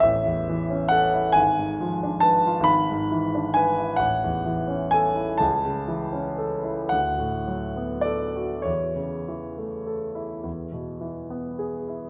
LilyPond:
<<
  \new Staff \with { instrumentName = "Grand piano" } { \time 6/8 \key a \major \tempo 4. = 42 e''4 fis''8 gis''4 a''8 | b''4 gis''8 fis''4 gis''8 | a''4. fis''4 d''8 | cis''4. r4. | }
  \new Staff \with { instrumentName = "Grand piano" } { \clef bass \time 6/8 \key a \major a,,16 e,16 e16 cis'16 a'16 e'16 gis,,16 gis,16 eis16 d'16 b'16 eis'16 | gis,,16 gis,16 e16 d'16 b'16 e'16 a,,16 e,16 e16 cis'16 a'16 e'16 | cis,16 cis16 e16 cis'16 a'16 e'16 d,16 a,16 fis16 b16 a'16 fis'16 | e,16 cis16 e16 a16 a'16 e'16 e,16 b,16 e16 b16 gis'16 e'16 | }
>>